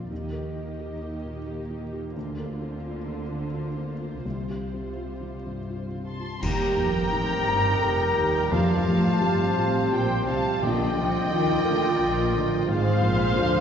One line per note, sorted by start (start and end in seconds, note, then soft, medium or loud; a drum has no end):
0.00 0.13 A#1 soft
0.00 0.13 F2 soft
0.00 0.13 D4 soft
0.00 0.13 F4 soft
0.00 0.13 C5 soft
0.10 2.11 D#2 soft
0.10 2.11 D#3 soft
0.10 4.20 A#3 soft
0.10 2.12 G4 soft
0.10 2.15 D#5 soft
0.33 0.70 A#4 soft
0.55 0.92 D#4 soft
0.79 1.16 G4 soft
1.02 1.38 D#4 soft
1.25 1.61 A#2 soft
1.46 1.83 G4 soft
1.70 2.06 D#4 soft
1.92 2.15 G4 soft
2.14 4.24 D2 soft
2.14 4.21 D2 medium
2.14 4.24 D3 medium
2.14 6.02 F4 soft
2.14 6.02 C5 medium
2.39 2.75 A#4 soft
2.62 2.98 C4 soft
2.85 3.21 F4 soft
3.07 3.44 C4 soft
3.31 3.68 D3 soft
3.54 3.91 F4 soft
3.77 4.15 C4 soft
4.01 4.25 F4 soft
4.24 6.18 C2 soft
4.24 6.39 C2 soft
4.24 6.18 C3 soft
4.24 6.22 G3 soft
4.50 4.88 G4 soft
4.74 5.12 C4 soft
4.97 5.35 F4 soft
5.21 5.60 C4 soft
5.46 5.84 G2 soft
5.70 6.09 F4 soft
5.95 6.33 C4 soft
6.05 6.40 A5 medium
6.05 6.40 C6 medium
6.20 6.43 F4 soft
6.42 6.76 D#2 medium
6.42 6.77 D#2 medium
6.42 10.59 G3 medium
6.42 7.09 G3 medium
6.42 10.65 G4 medium
6.42 7.09 G4 medium
6.42 8.48 A#4 medium
6.42 8.52 A#4 medium
6.42 8.48 G5 loud
6.42 8.52 A#5 loud
6.42 8.48 A#5 loud
6.42 concert bass drum medium
6.42 crash medium
6.78 7.13 F1 medium
6.78 7.13 F2 medium
6.78 7.34 A#3 soft
7.12 7.48 A1 medium
7.12 7.48 A2 medium
7.12 7.82 C4 medium
7.12 7.68 D#4 medium
7.12 8.52 D#4 medium
7.48 7.82 G1 medium
7.48 7.82 G2 medium
7.48 8.03 G4 medium
7.82 8.16 F1 medium
7.82 8.17 F2 medium
7.82 8.38 A#4 medium
7.82 9.23 A#4 medium
8.17 8.51 D#2 medium
8.17 8.52 D#2 medium
8.17 8.52 D#4 medium
8.51 8.87 F1 medium
8.51 9.54 F2 medium
8.51 8.86 F2 medium
8.51 8.87 F2 medium
8.51 10.59 C4 medium
8.51 10.59 F4 medium
8.51 10.61 C5 medium
8.51 9.90 F5 medium
8.51 9.93 A5 loud
8.51 9.90 A5 loud
8.87 9.23 A1 medium
8.87 9.23 A2 medium
8.87 9.44 F3 medium
9.21 9.57 G1 medium
9.21 9.57 G2 medium
9.21 9.78 C4 medium
9.21 10.60 C4 medium
9.57 9.92 A1 medium
9.57 9.93 A2 medium
9.57 10.14 G4 medium
9.92 10.27 A#1 medium
9.92 10.27 A#2 medium
9.92 10.49 F4 medium
9.92 10.27 C5 medium
9.92 10.28 G5 medium
9.92 10.28 G5 loud
10.27 10.62 C2 medium
10.27 10.62 C3 medium
10.27 10.63 C4 medium
10.27 10.63 F5 medium
10.27 10.62 A5 medium
10.27 10.62 A5 loud
10.61 10.97 A#1 medium
10.61 10.96 A#2 medium
10.61 11.63 A#2 medium
10.61 10.97 A#2 medium
10.61 11.31 D3 medium
10.61 13.60 F3 medium
10.61 12.64 F4 medium
10.61 12.65 F4 medium
10.61 13.60 F4 medium
10.61 12.51 D5 medium
10.61 12.70 D#5 medium
10.61 12.69 G5 loud
10.61 12.41 G5 loud
10.96 11.31 C2 medium
10.96 11.32 C3 medium
10.96 11.32 F3 medium
11.31 11.66 D#2 medium
11.31 11.66 D#3 medium
11.31 11.87 F4 medium
11.31 12.68 A#4 medium
11.64 12.00 D2 medium
11.64 12.00 D3 medium
11.64 12.20 A#4 medium
12.00 12.34 A#1 medium
12.00 12.34 A#2 medium
12.00 12.55 F4 medium
12.34 12.69 A1 medium
12.34 12.69 A2 medium
12.34 12.69 D3 medium
12.68 13.03 G#1 medium
12.68 13.02 G#2 medium
12.68 13.03 G#2 medium
12.68 13.36 C4 medium
12.68 13.60 F4 medium
12.68 13.60 G#4 medium
12.68 13.60 C5 loud
12.68 13.60 F5 loud
12.68 13.60 F5 medium
12.68 13.60 F5 loud
13.02 13.37 A#1 medium
13.02 13.37 A#2 medium
13.02 13.57 F3 medium
13.35 13.60 D2 medium
13.35 13.60 D3 medium
13.35 13.60 D4 medium
13.35 13.60 F4 medium